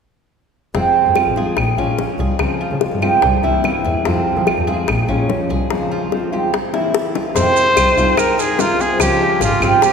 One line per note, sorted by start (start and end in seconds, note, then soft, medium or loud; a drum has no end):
0.75 0.83 F1 medium
0.75 1.15 C3 medium
0.75 1.15 F3 medium
0.75 1.16 G#3 medium
0.75 1.15 C4 medium
0.75 1.16 C4 medium
0.75 1.16 F4 medium
0.75 high bongo medium
1.07 1.15 F2 medium
1.15 1.36 F3 soft
1.15 1.37 G#3 soft
1.15 1.36 C4 medium
1.15 1.37 F4 medium
1.15 1.35 F4 medium
1.15 high bongo medium
1.15 claves medium
1.26 1.34 A1 medium
1.36 1.57 F3 medium
1.36 1.57 G#3 medium
1.36 1.57 C4 medium
1.36 1.57 F4 medium
1.36 1.77 G#4 medium
1.36 high bongo soft
1.57 1.65 A#1 medium
1.57 muted nylon-string guitar stroke medium
1.57 high bongo medium
1.57 claves medium
1.77 1.86 A#1 medium
1.77 1.98 G#3 medium
1.77 2.18 C#4 medium
1.77 1.98 C#4 medium
1.77 1.98 F4 medium
1.77 high bongo soft
1.98 2.39 F3 soft
1.98 2.40 G#3 soft
1.98 2.40 C#4 soft
1.98 2.40 F4 medium
1.98 high bongo soft
1.98 low bongo medium
2.19 2.27 C2 medium
2.19 2.60 G#4 medium
2.19 high bongo soft
2.39 2.48 C#2 medium
2.39 2.81 C#3 medium
2.39 2.80 F3 medium
2.39 2.81 G#3 medium
2.39 2.82 C4 medium
2.39 2.82 F4 medium
2.39 high bongo medium
2.39 claves medium
2.61 3.01 F4 medium
2.71 2.79 C#3 medium
2.81 3.01 F3 medium
2.81 3.02 G#3 medium
2.81 3.02 C4 soft
2.81 3.01 F4 medium
2.81 high bongo medium
2.92 3.00 G2 medium
3.02 3.23 F3 soft
3.02 3.23 G#3 medium
3.02 3.22 C4 medium
3.02 3.22 F4 medium
3.02 3.22 G4 medium
3.02 high bongo soft
3.02 claves medium
3.22 3.31 C2 loud
3.22 3.43 C5 medium
3.22 muted nylon-string guitar stroke medium
3.22 high bongo medium
3.43 3.52 C2 medium
3.43 3.63 E3 medium
3.43 3.64 A#3 medium
3.43 3.64 C4 medium
3.43 3.63 E4 medium
3.43 3.84 E4 medium
3.43 high bongo soft
3.64 4.05 E3 soft
3.64 4.05 A#3 soft
3.64 4.05 C4 medium
3.64 4.06 E4 medium
3.64 high bongo soft
3.64 low bongo medium
3.64 claves medium
3.85 3.93 E2 medium
3.85 4.05 G#4 medium
3.85 high bongo soft
4.05 4.14 F2 medium
4.05 4.45 C3 medium
4.05 4.46 F3 medium
4.05 4.46 G#3 medium
4.05 4.46 C4 medium
4.05 4.46 F4 medium
4.05 high bongo medium
4.37 4.45 F3 medium
4.47 4.67 F3 medium
4.47 4.67 G#3 soft
4.47 4.68 C4 medium
4.47 4.67 F4 medium
4.47 high bongo medium
4.47 claves medium
4.58 4.66 E2 medium
4.67 4.88 F3 medium
4.67 4.88 G#3 soft
4.67 4.88 C4 medium
4.67 4.88 F4 medium
4.67 5.07 G#4 medium
4.67 high bongo soft
4.88 4.96 A#1 medium
4.88 muted nylon-string guitar stroke medium
4.88 high bongo medium
4.88 claves medium
5.09 5.17 A#1 medium
5.09 5.29 G#3 medium
5.09 5.49 C#4 medium
5.09 5.29 C#4 medium
5.09 5.29 F4 medium
5.09 high bongo soft
5.29 5.70 F3 soft
5.29 5.70 G#3 soft
5.29 5.70 C#4 soft
5.29 5.71 F4 medium
5.29 high bongo soft
5.29 low bongo medium
5.50 5.58 C2 medium
5.50 5.90 G#4 medium
5.50 high bongo soft
5.70 6.11 C#3 medium
5.70 6.11 F3 medium
5.70 6.12 G#3 medium
5.70 6.12 C4 medium
5.70 6.12 F4 medium
5.70 high bongo medium
5.91 6.31 F4 medium
6.12 6.32 F3 medium
6.12 6.32 G#3 soft
6.12 6.32 C4 medium
6.12 6.31 F4 medium
6.12 high bongo soft
6.32 6.53 F3 soft
6.32 6.53 G#3 medium
6.32 6.53 C4 medium
6.32 6.52 F4 medium
6.32 6.53 G4 medium
6.32 high bongo soft
6.53 6.73 C5 medium
6.53 muted nylon-string guitar stroke soft
6.53 high bongo medium
6.73 6.92 E3 medium
6.73 6.93 A#3 medium
6.73 6.94 C4 medium
6.73 6.93 E4 medium
6.73 7.14 E4 medium
6.73 high bongo medium
6.93 7.34 E3 soft
6.93 7.34 A#3 soft
6.93 7.35 C4 soft
6.93 7.35 E4 soft
6.93 high bongo medium
7.15 7.35 F4 medium
7.15 low bongo medium
7.35 7.43 F2 medium
7.35 7.96 C3 medium
7.35 7.97 D#3 medium
7.35 7.98 G#3 medium
7.35 7.76 C4 medium
7.35 7.97 C4 medium
7.35 7.96 F4 medium
7.35 8.20 C5 loud
7.35 high bongo medium
7.35 maracas medium
7.56 maracas medium
7.77 7.85 C2 medium
7.77 7.97 F4 medium
7.77 high bongo medium
7.77 claves medium
7.77 maracas medium
7.97 8.05 C2 medium
7.97 8.16 D#3 medium
7.97 8.16 G#3 medium
7.97 8.37 C4 medium
7.97 8.17 C4 medium
7.97 8.17 F4 medium
7.97 high bongo soft
7.97 maracas soft
8.17 8.42 A#4 medium
8.17 muted nylon-string guitar stroke medium
8.17 high bongo medium
8.17 claves medium
8.17 maracas medium
8.38 8.79 D#4 medium
8.38 8.62 G#4 medium
8.38 high bongo soft
8.38 maracas medium
8.59 8.79 C3 medium
8.59 8.79 D#3 medium
8.59 8.80 G#3 medium
8.59 8.79 C4 medium
8.59 8.82 F4 medium
8.59 8.78 F4 medium
8.59 high bongo soft
8.59 low bongo medium
8.59 maracas medium
8.79 9.00 G#3 soft
8.79 9.00 C4 soft
8.79 8.99 F4 soft
8.79 9.00 G#4 medium
8.79 9.20 C5 medium
8.79 high bongo soft
8.79 maracas soft
9.00 9.08 C#2 medium
9.00 9.61 C#3 medium
9.00 9.63 F3 medium
9.00 9.62 G#3 medium
9.00 9.63 C4 medium
9.00 9.61 F4 medium
9.00 9.39 G4 medium
9.00 high bongo medium
9.00 claves medium
9.00 maracas medium
9.21 9.61 G#4 medium
9.41 9.49 G#1 medium
9.41 9.62 F4 medium
9.41 high bongo medium
9.41 maracas medium
9.61 9.69 G#1 medium
9.61 9.82 F3 medium
9.61 9.82 G#3 medium
9.61 9.82 C4 medium
9.61 9.82 F4 medium
9.61 high bongo soft
9.61 claves medium
9.61 maracas soft
9.82 9.93 F4 medium
9.82 9.93 G4 medium
9.82 muted nylon-string guitar stroke soft
9.82 high bongo medium
9.82 maracas medium